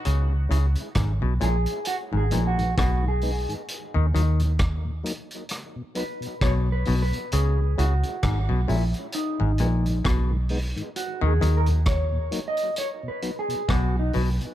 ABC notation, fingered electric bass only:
X:1
M:4/4
L:1/16
Q:"Swing 16ths" 1/4=66
K:D#phr
V:1 name="Fingered electric bass" clef=bass
C,,2 C,, z G,,, B,,, A,,, z2 G,,, A,,,2 B,,,3 z | z D,, D,,4 z6 B,,,2 B,,, z | C,,2 C,, z G,,, B,,, A,,, z2 G,,, A,,,2 B,,,3 z | z D,, D,,4 z6 B,,,2 B,,, z |]